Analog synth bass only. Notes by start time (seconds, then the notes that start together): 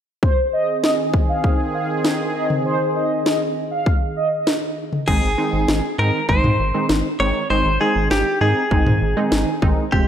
5.08 G#1
5.23 G#1
5.53 G#1
5.68 G#1
5.99 G#2
6.29 G#1
6.44 G#2
6.59 G#1
6.89 G#1
7.20 G#1
7.50 G#1
7.65 G#1
7.95 G#1
8.41 G#2
8.71 G#1
8.86 G#2
9.02 G#1
9.32 G#1
9.62 G#1
9.92 F1